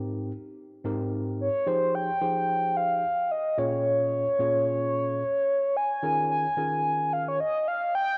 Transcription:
Already playing: G#2 C4 D#4 G4 A#4
0.85 G#2 C4 D#4 G4 A#4
1.41 C#5
1.67 F3 D#4 G4 G#4 C5
1.95 G5
2.21 F3 D#4 G4 G#4 C5
2.77 F5
3.31 D#5
3.58 A#2 C#4 F4 G#4 C#5
4.39 A#2 C#4 F4 G#4 C#5
5.76 G#5
6.03 D#3 C#4 F4 G#4 A#4
6.31 G#5
6.57 D#3 C#4 F4 G#4 A#4
7.13 F5
7.28 C#5
7.40 D#5
7.68 F5
7.95 G5

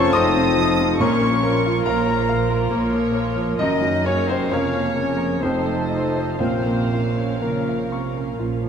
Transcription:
Already playing: F2 F3 A3 C4 C#4 F4 A4 A#4 C5 C#5 A5 A#5 C6 C#6
0.12 F1 F2 D#4 D#5 C6 D#6
0.16 C4
0.36 C3
0.56 F3 A3 F4
0.80 C3
0.99 A#1 A#2 A#3 C#4 F4 A#4 C#5 A#5 C#6
1.22 A#3
1.43 A#3 F4 A#4
1.66 F4
1.85 A#1 A#2 A#3 A#4 C#5 F5 A#5
2.08 A#5
2.28 A#3 F4 C5 F5
2.50 A#4
2.70 A#1 A#2 A#3 C#5
2.92 F3
3.12 A#3 F4
3.36 F3
3.58 F#1 F#2 D#3 F#3 C#4 D#4 A#4 D#5
3.81 F#3
4.04 C#3 A#3 C#4 F#4 C#5
4.26 C3 C4 A#4 C5
4.31 C4
4.50 F1 F2 C#3 F3 A#3 C#4 A#4 C#5 F5
4.54 C#4
4.73 A#3
4.95 A#3 C#4 A#4
5.17 A#4
5.40 F1 F2 C3 A3 C4 D#4 A4 C5
5.44 C4 A4
5.65 A3
5.88 A3 D#4 D#5
6.16 C5
6.38 A#1 A#2 C3 A#3 C4 C#4 F4 A#4 C5 F5
6.66 A#3
6.91 A#3 C#4 F4
7.17 C#5
7.40 A#1 A#2 C#3 A#3 F4 A#4
7.69 F5
7.89 C3 A#3 C#4 C#6
8.16 A#4
8.36 A#1 A#2 F4
8.63 F3

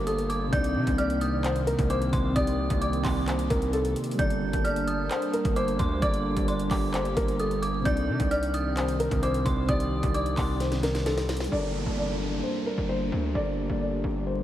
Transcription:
Already playing: G1 G3 A#3 D4 G4 A4 A#4 A5
0.07 A4 D#6, closed hi-hat
0.19 closed hi-hat
0.30 D6, closed hi-hat
0.48 C3 C4
0.53 C2 C3 D#3 C4 D#4 D5 G6, kick, closed hi-hat
0.57 D4
0.64 closed hi-hat
0.75 C3
0.87 C2, kick, closed hi-hat
0.98 D5 F6, closed hi-hat
1.10 closed hi-hat
1.21 D#6, closed hi-hat
1.44 C5, clap, closed hi-hat
1.56 closed hi-hat
1.67 A#4, closed hi-hat
1.79 C2, kick, closed hi-hat
1.90 C5 D6, closed hi-hat
2.02 closed hi-hat
2.13 C2 C6, kick, closed hi-hat
2.31 C3 C4
2.36 C2 D#4 D5 D#6, kick, closed hi-hat
2.40 G4
2.47 closed hi-hat
2.70 C2, kick, closed hi-hat
2.81 D5 D6, closed hi-hat
2.93 closed hi-hat
3.04 C2 C6, kick, clap, open hi-hat
3.27 C5, clap, closed hi-hat
3.39 closed hi-hat
3.50 C2 A#4, kick, closed hi-hat
3.62 closed hi-hat
3.73 A4, closed hi-hat
3.85 closed hi-hat
3.96 closed hi-hat
4.04 closed hi-hat
4.11 G3, closed hi-hat
4.18 G1 G3 A#3 D4 A4 D5 A5 G6, kick, closed hi-hat
4.23 A#4
4.30 closed hi-hat
4.53 G1, kick, closed hi-hat
4.64 D5 F6, closed hi-hat
4.76 closed hi-hat
4.87 D#6, closed hi-hat
5.11 C5, clap, closed hi-hat
5.22 closed hi-hat
5.33 A#4, closed hi-hat
5.45 G1, kick, closed hi-hat
5.56 C5 D6, closed hi-hat
5.68 closed hi-hat
5.79 D2 C6, kick, closed hi-hat
5.98 G3 D4
6.02 G1 G4 A4 D5 D6, kick, closed hi-hat
6.06 A#4
6.14 closed hi-hat
6.37 G1, kick, closed hi-hat
6.48 D5 C6, closed hi-hat
6.59 closed hi-hat
6.71 G1 D6, kick, clap, open hi-hat
6.94 C5, clap, closed hi-hat
7.05 closed hi-hat
7.17 G1 A#4, kick, closed hi-hat
7.28 closed hi-hat
7.39 A4 D#6, closed hi-hat
7.51 closed hi-hat
7.62 D6, closed hi-hat
7.81 C3 C4
7.85 C2 C3 D#3 C4 D#4 D5 G6, kick, closed hi-hat
7.90 D4
7.97 closed hi-hat
8.08 C3
8.20 C2, kick, closed hi-hat
8.31 D5 F6, closed hi-hat
8.43 closed hi-hat
8.54 D#6, closed hi-hat
8.77 C5, clap, closed hi-hat
8.88 closed hi-hat
9.00 A#4, closed hi-hat
9.11 C2, kick, closed hi-hat
9.23 C5 D6, closed hi-hat
9.34 closed hi-hat
9.46 C2 C6, kick, closed hi-hat
9.64 C3 C4
9.69 C2 D#4 D5 D#6, kick, closed hi-hat
9.73 G4
9.80 closed hi-hat
10.03 C2, kick, closed hi-hat
10.14 D5 D6, closed hi-hat
10.26 closed hi-hat
10.37 C2 C6, kick, clap, open hi-hat
10.60 C5, snare, closed hi-hat
10.72 snare, closed hi-hat
10.83 A#4, snare, closed hi-hat
10.95 snare, closed hi-hat
11.06 A4, snare, closed hi-hat
11.18 snare, closed hi-hat
11.29 snare, closed hi-hat
11.37 snare, closed hi-hat
11.44 G3, closed hi-hat
11.51 G1 G3 A#3 D4 A4 D5 A5, downlifter
11.57 A#4
11.86 G1
11.98 D5
12.43 C5
12.66 A#4
12.78 G1
12.89 C5
13.12 D2
13.31 G3 D4 D5
13.35 G1 G4 A4
13.40 A#4
13.69 G1
13.81 D5
14.04 G1
14.27 C5

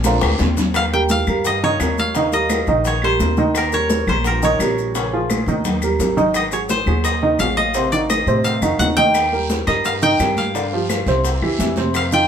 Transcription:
Already playing: A#1
0.04 D3 G#3 C4 A#4 D5 F5 A#5, high bongo, high conga, long guiro, maracas
0.21 D2, high bongo, claves, maracas
0.39 D#2, low bongo, low conga, short guiro, maracas
0.57 low bongo, low conga, short guiro, maracas
0.74 F5, high bongo, high conga, claves, maracas
0.93 G3 G4 A#4 G5, high conga
1.09 F5, high bongo, high conga, maracas
1.27 G2 G3 G4 A#4, high bongo, claves, maracas
1.45 D#5, high bongo, high conga, maracas
1.62 D#3 D#4 C#5 D#5, high bongo, high conga
1.80 D#2 G3 G4 A#4, high bongo, low bongo, high conga, claves, maracas
1.97 F5, high bongo, high conga, maracas
2.15 D#3 D#4 D#5, high bongo, high conga, maracas
2.32 G3 G4 A#4 D#5, high conga, maracas
2.50 high bongo, high conga, claves, maracas
2.67 A#1 D#3 D#4 D#5, high bongo, high conga, maracas
2.85 C#5, high bongo, high conga, maracas
3.02 G3 G4 A#4 C5, high bongo, high conga, claves
3.20 D#2 G3 G4 A#4, high bongo, low bongo, high conga, maracas
3.37 D#3 D#4 D#5, high bongo, high conga, maracas
3.54 A#4, high bongo, high conga, claves, maracas
3.72 G3 G4 A#4 C#5, high conga, maracas
3.90 high bongo, high conga, maracas
4.07 A#1 G3 G4 A#4 C5, high bongo, claves, maracas
4.24 A#4, high bongo, high conga, maracas
4.42 D#3 D#4 C#5 D#5, high bongo, high conga, maracas
4.59 A#1 G3 G4 A#4, high bongo, low bongo, high conga, claves, maracas
4.78 high bongo, maracas
4.95 C#3 C#4 C#5, high bongo, high conga, maracas
5.13 F3 F4 G#4, high conga
5.30 high bongo, high conga, claves, maracas
5.46 D#2 D#3 D#4 D#5, high bongo, high conga, maracas
5.65 high bongo, low conga, maracas
5.82 G3 G4 A#4, high bongo, claves, maracas
5.99 G#1 G3 G4 A#4, high bongo, low bongo, low conga, maracas
6.17 D#3 D#4 D#5, high bongo, low conga, maracas
6.34 D#5, high bongo, high conga, claves, maracas
6.52 F#3 F#4 G#4 C#5, high conga, maracas
6.69 C5, high bongo, high conga, maracas
6.86 D#2 F#3 F#4 G#4, high bongo, claves, maracas
7.04 D#5, high bongo, high conga, maracas
7.22 D#3 D#4 D#5, high bongo, high conga
7.39 A1 F#3 F#4 G#4 F5, high bongo, low bongo, high conga, claves, maracas
7.57 D#5, high bongo, high conga, maracas
7.74 C3 C4 C5, high bongo, high conga, maracas
7.92 D#3 D#4 F#4 D5, maracas
8.10 D#5, high bongo, high conga, claves, maracas
8.26 A2 C3 C4 C5, high bongo, high conga, maracas
8.44 F5, high bongo, high conga, maracas
8.62 F2 D#3 D#4 F#4, high bongo, high conga, claves, maracas
8.78 D#2 D#3 D#4 F#4 F#5, high bongo, low bongo, high conga, maracas
8.97 D#3 D#4 D#5 G5, high bongo, high conga, maracas
9.14 high bongo, high conga, long guiro, claves, maracas
9.32 G3 G4 A#4, high conga
9.49 high bongo, high conga, short guiro, maracas
9.67 G2 G3 G4 A#4 D#5, high bongo, short guiro, claves, maracas
9.84 F5, high bongo, high conga, long guiro, maracas
10.02 D#3 D#4 D#5 G5, high bongo, high conga, maracas
10.19 G2 G3 G4 A#4, high bongo, low bongo, high conga, short guiro, claves, maracas
10.37 F5, high bongo, high conga, short guiro, maracas
10.54 D3 D4 D5, high bongo, high conga, long guiro, maracas
10.72 F3 F4 G4, high conga
10.89 high bongo, high conga, short guiro, claves, maracas
11.06 C2 C3 C4 C5, high bongo, high conga, short guiro, maracas
11.24 high bongo, high conga, long guiro, maracas
11.41 E2 E3 E4 G4, high bongo, high conga, claves
11.58 F2 E3 E4 G4, high bongo, low bongo, high conga, short guiro, maracas
11.76 C3 C4 C5, high bongo, high conga, short guiro, maracas
11.94 F5, high bongo, high conga, long guiro, claves, maracas
12.11 D#3 D#4 F4 G5, high conga, maracas

